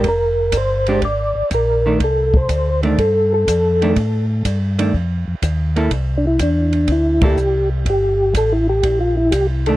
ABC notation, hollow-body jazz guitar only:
X:1
M:4/4
L:1/8
Q:"Swing" 1/4=123
K:Cdor
V:1 name="Hollow-body jazz guitar"
z3 [_A,DG] z3 [E,=A,D] | z3 [E,A,D] z3 [E,A,D] | z3 [E,A,D] z3 [B,=EA] | z4 z [B,=EA] z2 |
z6 z [E,A,D] |]